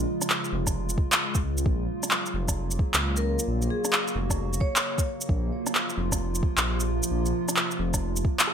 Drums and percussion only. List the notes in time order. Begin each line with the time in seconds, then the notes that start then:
0.22 cross-stick, shaker
0.30 clap
0.44 shaker
0.67 kick, cross-stick, shaker
0.89 shaker
0.98 kick
1.12 clap, shaker
1.35 kick, shaker
1.58 shaker
1.66 kick
2.03 cross-stick, shaker
2.11 clap
2.26 shaker
2.48 kick, cross-stick, shaker
2.71 shaker
2.79 kick
2.94 clap, shaker
3.17 shaker
3.39 shaker
3.62 shaker
3.85 cross-stick, shaker
3.93 clap
4.08 shaker
4.30 kick, cross-stick, shaker
4.53 shaker
4.61 kick
4.76 clap, shaker
4.98 kick, shaker
5.21 shaker
5.29 kick
5.67 cross-stick, shaker
5.75 clap
5.90 shaker
6.12 kick, cross-stick, shaker
6.35 shaker
6.43 kick
6.58 clap, shaker
6.80 shaker
7.03 shaker
7.26 shaker
7.49 cross-stick, shaker
7.57 clap
7.71 shaker
7.94 kick, cross-stick, shaker
8.16 shaker
8.25 kick
8.39 clap, shaker
8.47 cross-stick